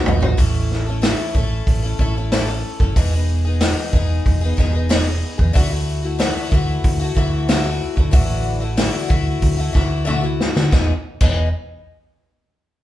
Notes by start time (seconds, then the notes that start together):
0.05 B1 F#3 B3 D#4 F#4, floor tom
0.20 A1 B3 D#4 F#4, floor tom
0.37 A1 A2 E3 A3 C#4 E4 A4, kick, open hi-hat
0.71 snare
0.86 A3 C#4 E4 A4
1.02 A2 E3 A3 C#4 E4 A4, snare, open hi-hat
1.34 A1 A3 C#4 E4 A4, kick
1.67 A1, kick, open hi-hat
1.82 A3 C#4 E4 A4
1.98 A1 A3 C#4 E4 A4, kick
2.16 A3 C#4 E4 A4
2.32 A2 E3 A3 C#4 E4 A4, snare, open hi-hat
2.47 A3 C#4 E4 A4
2.80 F#1 A3 C#4 E4 A4, kick
2.96 E1 E3 G#3 B3 D#4 G#4, kick, open hi-hat
3.13 B3 D#4 G#4
3.45 D#4 G#4
3.49 B3
3.60 E3 G#3 B3 D#4 G#4, snare, open hi-hat
3.93 E1 G#3 B3 D#4 G#4, kick
4.26 E1, kick, open hi-hat
4.41 D#4 G#4
4.45 B3
4.57 E1 G#3 B3 D#4 G#4, kick, snare
4.73 B3 D#4 G#4
4.89 E3 G#3 B3 D#4 G#4, snare, open hi-hat
5.05 B3 D#4 G#4
5.38 E2 B3 D#4 G#4, kick
5.53 D2 D3 E3 A3 E4 F#4, kick, open hi-hat
5.70 A3 E4 F#4
6.02 A3 E4 F#4
6.19 D3 E3 A3 E4 F#4, snare, open hi-hat
6.51 D2 E3 A3 E4 F#4, kick
6.84 D2, kick, open hi-hat
7.00 A3 E4 F#4
7.15 D2 E3 A3 E4 F#4, kick
7.49 D3 E3 A3 E4 F#4, snare, open hi-hat
7.63 A3 E4 F#4
7.96 D2 A3 E4 F#4, kick
8.11 A1 D3 E3 A3 E4 F#4, kick, open hi-hat
8.60 A3 E4 F#4
8.77 D3 E3 A3 E4 F#4, snare, open hi-hat
9.08 D2 E3 A3 E4 F#4, kick
9.42 D2, kick, open hi-hat
9.57 A3 E4 F#4
9.73 D2 E3 A3 E4 F#4, kick, snare
10.05 D3 E3 A3 E4 F#4, high tom
10.21 A3 E4 F#4
10.40 snare
10.55 D3 A3 E4 F#4, snare
10.71 E1 E3 G#3 B3 D#4 G#4, kick, snare
11.21 E1 E3 G#3 B3 D#4 G#4, kick, crash